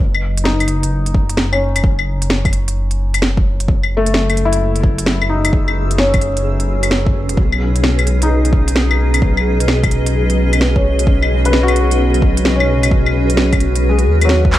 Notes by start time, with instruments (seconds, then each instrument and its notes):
0.00 detuned saw bass F#1
0.15 claves
0.37 closed hi-hat
0.44 felt piano D#4, snare
0.60 closed hi-hat, claves
0.68 closed hi-hat
0.83 closed hi-hat
1.06 closed hi-hat
1.14 kick
1.30 closed hi-hat
1.37 snare
1.52 felt piano C#4, claves
1.76 closed hi-hat, claves
1.84 detuned saw bass F#1, kick
1.99 claves
2.22 closed hi-hat
2.30 snare
2.45 kick, closed hi-hat, claves
2.53 closed hi-hat
2.68 closed hi-hat
2.91 closed hi-hat
3.14 closed hi-hat, claves
3.22 snare
3.37 kick
3.60 closed hi-hat
3.68 detuned saw bass F#1, ambient pad G#4, kick
3.83 ambient pad F#4, claves
3.88 ambient pad C#4
3.97 felt piano A3
4.06 closed hi-hat
4.14 snare
4.26 ambient pad B4, closed hi-hat, claves
4.37 closed hi-hat
4.42 felt piano E4, ambient pad E6
4.53 closed hi-hat
4.76 closed hi-hat
4.84 kick
4.98 closed hi-hat
5.06 snare
5.22 claves
5.30 felt piano D#4
5.45 closed hi-hat, claves
5.53 detuned saw bass F#1, kick
5.68 claves
5.91 closed hi-hat
5.98 felt piano C#4, snare
6.14 kick, closed hi-hat, claves
6.21 closed hi-hat
6.37 closed hi-hat
6.60 closed hi-hat
6.83 closed hi-hat, claves
6.91 snare
7.06 kick
7.29 detuned saw bass E1, closed hi-hat
7.37 detuned saw bass B1, kick
7.52 claves
7.76 closed hi-hat
7.84 snare
7.99 closed hi-hat, claves
8.07 closed hi-hat
8.19 felt piano D#4, ambient pad D#5, closed hi-hat
8.45 closed hi-hat
8.53 kick
8.68 closed hi-hat
8.76 snare
8.91 claves
9.14 closed hi-hat, claves
9.22 detuned saw bass B1, kick
9.37 claves
9.60 closed hi-hat
9.68 snare
9.83 kick, closed hi-hat, claves
9.91 closed hi-hat
10.06 closed hi-hat
10.30 closed hi-hat
10.53 closed hi-hat, claves
10.61 snare
10.76 felt piano C#4, kick
10.99 closed hi-hat
11.07 detuned saw bass B1, kick
11.22 claves
11.45 felt piano B4, closed hi-hat
11.53 snare
11.63 felt piano F#4
11.68 closed hi-hat, claves
11.76 closed hi-hat
11.91 closed hi-hat
12.14 closed hi-hat
12.22 kick
12.37 closed hi-hat
12.45 snare
12.56 felt piano C#4
12.60 claves
12.83 closed hi-hat, claves
12.91 detuned saw bass B1, kick
13.06 claves
13.30 closed hi-hat
13.37 snare
13.53 kick, closed hi-hat, claves
13.60 closed hi-hat
13.76 closed hi-hat
13.89 felt piano G#3
13.99 closed hi-hat
14.06 detuned saw bass D#2
14.21 felt piano F#3, closed hi-hat, claves
14.29 snare
14.45 kick
14.52 clap